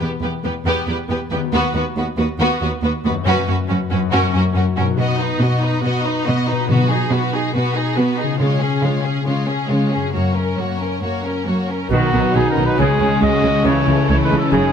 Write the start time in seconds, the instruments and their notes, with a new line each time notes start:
Already playing: harp E3 B3 G4 B4
0.02 cello section E2, viola section B3, violin section G4
0.22 cello section E2, viola section B3, violin section G4 B4
0.44 cello section E2, viola section B3, violin section G4 B4
0.65 cello section E2, viola section B3, violin section G4 B4
0.88 cello section E2, viola section B3, violin section G4 B4
1.09 cello section E2, viola section B3, violin section G4 B4
1.31 cello section E2, viola section B3, violin section G4 B4
1.36 harp D#3
1.40 harp B3
1.44 harp F#4
1.49 harp B4
1.53 cello section D#2, viola section B3, violin section F#4 B4
1.74 cello section D#2, viola section B3, violin section F#4 B4
1.96 cello section D#2, viola section B3, violin section F#4 B4
2.18 cello section D#2, viola section B3, violin section F#4 B4
2.39 cello section D#2, viola section B3, violin section F#4 B4
2.61 cello section D#2, viola section B3, violin section F#4 B4
2.83 cello section D#2, viola section B3, violin section F#4 B4
3.04 cello section D#2, viola section B3, violin section F#4 B4
3.08 harp F#2
3.13 harp C#4
3.17 harp F#4
3.21 viola section C#4, harp B4
3.26 timpani F#2, cello section F#2, violin section F#4 B4
3.47 cello section F#2, viola section C#4, violin section F#4 B4
3.68 cello section F#2, viola section C#4, violin section F#4 B4
3.91 cello section F#2, harp F#2, viola section C#4, violin section F#4 B4
3.99 harp C#4
4.03 harp F#4
4.08 timpani F#2, viola section C#4, violin section F#4, harp A#4
4.13 cello section F#2, violin section A#4
4.33 cello section F#2, viola section C#4, violin section F#4 A#4
4.55 cello section F#2, viola section C#4, violin section F#4 A#4
4.77 cello section F#2, harp B2, viola section C#4, violin section F#4 A#4
4.85 harp D#4
4.89 harp F#4
4.94 harp B4
4.98 cello section B2, viola section B3, violin section F#4 D#5
5.20 viola section D#4, violin section D#4 B4
5.40 cello section B2, viola section B3, violin section F#4 D#5
5.62 violin section D#4 B4, viola section D#4
5.83 cello section B2, viola section B3, violin section F#4 D#5
6.04 violin section D#4 B4, viola section D#4
6.26 cello section B2, viola section B3, violin section F#4 D#5
6.47 violin section D#4 B4, viola section D#4
6.52 harp B2
6.56 harp D#4
6.60 harp F#4
6.65 viola section B3, harp G#4, violin section B4
6.69 cello section B2, timpani B2, violin section F#4
6.91 viola section D#4, violin section G#4
7.12 cello section B2, viola section B3, violin section F#4 B4
7.33 viola section D#4, violin section G#4
7.53 cello section B2, viola section B3, violin section F#4 B4
7.76 viola section D#4, violin section G#4
7.97 cello section B2, viola section B3, violin section F#4 B4
8.19 viola section D#4, violin section G#4
8.23 harp C#3
8.28 harp C#4
8.32 harp F4
8.37 cello section C#3, viola section G#3, violin section F4 C#5, harp G#4
8.61 viola section C#4, violin section G#4
8.83 cello section C#3, viola section G#3, violin section F4 C#5
9.04 viola section C#4, violin section G#4
9.25 cello section C#3, viola section G#3, violin section F4 C#5
9.47 viola section C#4, violin section G#4
9.68 cello section C#3, viola section G#3, violin section F4 C#5
9.91 viola section C#4, violin section G#4
9.96 harp F#2
10.00 harp C#4
10.04 harp F#4
10.09 violin section F#4, harp A#4
10.13 cello section F#2, viola section A#3, violin section C#5
10.35 viola section C#4, violin section A#4
10.58 cello section F#2, viola section A#3, violin section F#4 C#5
10.80 viola section C#4, violin section A#4
11.03 cello section F#2, viola section A#3, violin section F#4 C#5
11.25 viola section C#4, violin section A#4
11.47 cello section F#2, viola section A#3, violin section F#4 C#5
11.69 viola section C#4, violin section A#4
11.91 double bass section B1, cello section B2, harp B2, viola section D#3 F#3, trombone section D#3 F#3, violin section B3 D#4, clarinet B3, french horn section B3 F#4, trumpet F#4
12.12 double bass section B1, cello section B2, viola section D#3, harp D#4
12.35 double bass section B1, cello section B2, viola section F#3, violin section B3, clarinet D#4, trumpet G#4, harp B4
12.50 violin section C#4, trumpet A#4
12.57 double bass section B1, cello section B2, viola section D#3, harp F#4
12.65 violin section D#4, trumpet B4
12.78 cello section C#2, double bass section C#2, harp C#3, viola section C#3 G#3, trombone section C#3 G#3, french horn section G#3 C#4, violin section G#3 C#4, clarinet C#4, trumpet G#4
13.00 cello section C#2, double bass section C#2, viola section C#3, harp C#4
13.21 cello section C#2, double bass section C#2, viola section C#3, violin section F#4, harp G#4, trumpet D#5
13.43 cello section C#2, double bass section C#2, viola section C#3, harp F4
13.65 cello section C#2, double bass section C#2, viola section C#3 E3, harp C#3, trombone section E3, french horn section A3, violin section A3 E4, trumpet C#5
13.87 cello section C#2, double bass section C#2, viola section C#3, harp C#4
14.09 cello section C#2, double bass section C#2, viola section C#3, clarinet E4, violin section E4, harp A4, trumpet C#5
14.24 violin section D#4, trumpet B4
14.31 cello section C#2, double bass section C#2, viola section C#3, harp E4
14.38 violin section C#4, trumpet A4
14.51 double bass section F#1, harp F#2, cello section F#2, viola section C#3 F#3, trombone section F#3, french horn section G#3, violin section G#3 C#4, clarinet D#4, trumpet G#4